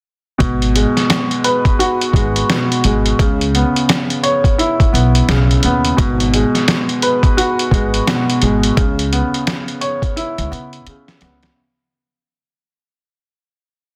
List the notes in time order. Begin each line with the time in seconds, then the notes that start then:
0.38 G#1 B2, kick, closed hi-hat
0.62 closed hi-hat
0.76 G#3, closed hi-hat
0.97 snare, closed hi-hat
1.10 snare, closed hi-hat
1.31 closed hi-hat
1.44 B4, closed hi-hat
1.65 kick, closed hi-hat
1.79 F#4, closed hi-hat
2.01 closed hi-hat
2.13 G#1 G#3, kick, closed hi-hat
2.36 closed hi-hat
2.50 B2, snare, closed hi-hat
2.72 closed hi-hat
2.84 G#1 G#3, closed hi-hat
3.06 closed hi-hat
3.19 C#2 C#3, kick, closed hi-hat
3.41 closed hi-hat
3.55 B3, closed hi-hat
3.76 closed hi-hat
3.89 snare, closed hi-hat
4.10 closed hi-hat
4.23 C#5, closed hi-hat
4.44 kick, closed hi-hat
4.58 E4, closed hi-hat
4.80 kick, closed hi-hat
4.93 B1 B3, closed hi-hat
5.15 closed hi-hat
5.29 B1 C#3, snare, closed hi-hat
5.51 closed hi-hat
5.63 D#2 B3, closed hi-hat
5.85 closed hi-hat
5.97 G#1 B2, kick, closed hi-hat
6.20 closed hi-hat
6.34 G#3, closed hi-hat
6.55 snare, closed hi-hat
6.68 snare, closed hi-hat
6.89 closed hi-hat
7.02 B4, closed hi-hat
7.23 kick, closed hi-hat
7.37 F#4, closed hi-hat
7.59 closed hi-hat
7.71 G#1 G#3, kick, closed hi-hat
7.94 closed hi-hat
8.07 B2, snare, closed hi-hat
8.30 closed hi-hat
8.42 G#1 G#3, closed hi-hat
8.63 closed hi-hat
8.77 C#2 C#3, kick, closed hi-hat
8.99 closed hi-hat
9.12 B3, closed hi-hat
9.34 closed hi-hat
9.47 snare, closed hi-hat
9.68 closed hi-hat
9.81 C#5, closed hi-hat
10.02 kick, closed hi-hat
10.16 E4, closed hi-hat
10.38 C#2, closed hi-hat
10.51 C#3 B3, closed hi-hat
10.73 closed hi-hat
10.87 C#3, closed hi-hat
11.08 snare, closed hi-hat
11.21 C#2 B3, snare, closed hi-hat
11.43 snare, closed hi-hat